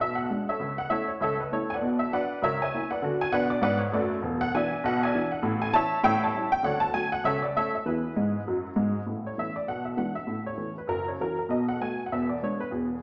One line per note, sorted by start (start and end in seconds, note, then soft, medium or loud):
0.00 0.26 B1 medium
0.00 0.26 B2 medium
0.00 0.16 E5 medium
0.15 0.42 F#5 medium
0.30 0.47 G#3 medium
0.30 0.47 D4 soft
0.49 0.77 A4 medium
0.49 0.77 C#5 medium
0.49 0.74 E5 medium
0.60 0.86 C#2 medium
0.60 0.86 C#3 medium
0.78 0.89 F#5 medium
0.90 1.06 A3 soft
0.90 1.06 C#4 soft
0.90 1.07 E4 soft
0.90 1.08 A4 medium
0.90 1.06 C#5 medium
0.90 1.05 E5 medium
1.08 1.19 C#5 medium
1.21 1.46 C#2 medium
1.21 1.47 C#3 medium
1.21 1.39 A4 medium
1.21 1.39 C#5 medium
1.21 1.37 E5 medium
1.40 1.50 B4 medium
1.52 1.68 A3 soft
1.52 1.68 C#4 soft
1.52 1.69 E4 medium
1.52 1.69 A4 medium
1.52 1.67 C#5 medium
1.70 1.97 F#5 medium
1.70 1.72 G#5 medium
1.75 1.99 B4 soft
1.75 1.99 D5 medium
1.81 2.07 B1 medium
1.81 2.07 B2 medium
1.99 2.10 E5 medium
2.12 2.29 F#3 soft
2.12 2.29 D4 medium
2.12 2.41 B4 medium
2.12 2.41 D5 medium
2.12 2.38 F#5 medium
2.42 2.67 C#2 medium
2.42 2.68 C#3 medium
2.42 2.60 A#4 medium
2.42 2.60 C#5 medium
2.42 2.58 E5 loud
2.62 2.89 C#5 medium
2.62 2.90 E5 medium
2.62 2.87 G#5 medium
2.73 2.89 A#3 medium
2.73 2.89 C#4 soft
2.73 2.90 E4 medium
2.91 3.19 B4 medium
2.91 3.19 D5 medium
2.91 3.16 F#5 medium
3.02 3.26 D3 medium
3.02 3.27 F#4 medium
3.21 3.31 G#5 loud
3.32 3.56 B2 medium
3.32 3.57 D4 medium
3.32 3.50 B4 medium
3.32 3.49 D5 medium
3.32 3.48 F#5 loud
3.50 3.61 D5 medium
3.61 3.86 G#2 medium
3.61 3.87 B3 medium
3.61 3.80 B4 medium
3.61 3.79 D5 medium
3.61 3.78 F#5 loud
3.79 3.90 C#5 medium
3.92 4.16 F#2 medium
3.92 4.17 A3 medium
3.92 4.10 F#4 medium
3.92 4.10 B4 medium
3.92 4.08 D5 medium
4.22 4.48 E1 medium
4.22 4.48 E2 medium
4.41 4.51 F#5 loud
4.55 4.71 E3 medium
4.55 4.71 B3 medium
4.55 4.71 D4 medium
4.55 4.82 D5 medium
4.55 4.83 E5 medium
4.55 4.80 G#5 medium
4.84 5.09 B1 medium
4.84 5.09 B2 medium
4.84 5.00 F#5 loud
5.03 5.31 D5 medium
5.03 5.31 E5 medium
5.03 5.28 G#5 medium
5.14 5.31 E3 medium
5.14 5.31 D4 medium
5.14 5.31 E4 medium
5.32 5.42 F#5 medium
5.42 5.68 A1 medium
5.42 5.69 A2 medium
5.62 5.72 G#5 medium
5.73 5.90 E3 medium
5.73 5.90 C#4 medium
5.73 5.90 E4 medium
5.73 6.02 C#5 loud
5.73 6.03 E5 medium
5.73 5.99 A5 loud
6.03 6.29 A1 medium
6.03 6.29 A2 loud
6.03 6.21 C#5 medium
6.03 6.21 E5 loud
6.03 6.19 G5 loud
6.24 6.51 C#5 medium
6.24 6.51 E5 medium
6.24 6.48 A5 medium
6.34 6.51 G3 medium
6.34 6.52 C#4 medium
6.34 6.52 E4 medium
6.52 6.62 G5 loud
6.63 6.90 D2 medium
6.63 6.89 D3 medium
6.63 6.81 C#5 medium
6.63 6.81 D5 medium
6.63 6.79 F#5 loud
6.80 6.91 A5 loud
6.93 7.11 F#3 medium
6.93 7.10 A3 soft
6.93 7.11 C#4 medium
6.93 7.09 G#5 loud
7.12 7.23 F#5 loud
7.24 7.50 C#2 medium
7.24 7.50 C#3 medium
7.24 7.42 A4 medium
7.24 7.42 C#5 medium
7.24 7.40 E5 loud
7.42 7.53 D5 medium
7.56 7.72 A3 soft
7.56 7.72 C#4 medium
7.56 7.73 A4 medium
7.56 7.73 C#5 medium
7.56 7.71 E5 loud
7.75 7.84 E5 medium
7.86 8.12 E2 medium
7.86 8.11 E3 medium
7.86 8.73 E4 soft
7.86 8.73 G#4 soft
7.86 8.63 B4 medium
8.16 8.39 G#2 medium
8.16 8.39 G#3 medium
8.47 8.69 F#2 medium
8.47 8.69 F#3 medium
8.76 8.99 G#2 medium
8.76 8.99 G#3 medium
9.06 9.32 A1 soft
9.06 9.32 A2 medium
9.27 9.36 C#5 medium
9.38 9.54 E3 soft
9.38 9.55 A3 soft
9.38 9.55 C#4 soft
9.38 9.53 E5 medium
9.56 9.66 D5 medium
9.68 9.93 B1 soft
9.68 9.93 B2 medium
9.68 9.83 F#5 medium
9.85 9.95 E5 medium
9.97 10.14 E3 soft
9.97 10.14 G#3 soft
9.97 10.15 D4 soft
9.97 10.13 F#5 medium
10.15 10.41 E5 medium
10.26 10.52 A1 soft
10.26 10.53 A2 medium
10.46 10.72 C#5 medium
10.57 10.74 E3 soft
10.57 10.74 A3 soft
10.57 10.74 C#4 soft
10.78 10.88 B4 medium
10.87 11.14 F#1 medium
10.87 11.13 F#2 medium
10.87 11.04 A#4 medium
11.08 11.18 C#5 medium
11.21 11.37 E3 soft
11.21 11.37 C#4 soft
11.21 11.38 F#4 soft
11.21 11.35 A#4 medium
11.39 11.48 A#4 medium
11.49 11.75 B1 medium
11.49 11.75 B2 medium
11.49 11.65 D#5 medium
11.68 11.78 F#5 medium
11.81 11.97 A3 soft
11.81 11.97 B3 soft
11.81 11.98 F#4 soft
11.81 12.01 G#5 medium
12.06 12.11 F#5 medium
12.12 12.37 E1 medium
12.12 12.37 E2 medium
12.12 12.27 E5 medium
12.29 12.39 D5 medium
12.43 12.59 G#3 soft
12.43 12.59 B3 soft
12.43 12.59 D4 soft
12.43 12.57 C#5 medium
12.60 12.70 B4 medium
12.71 12.97 E1 soft
12.71 12.97 E2 medium
12.71 13.02 G#4 medium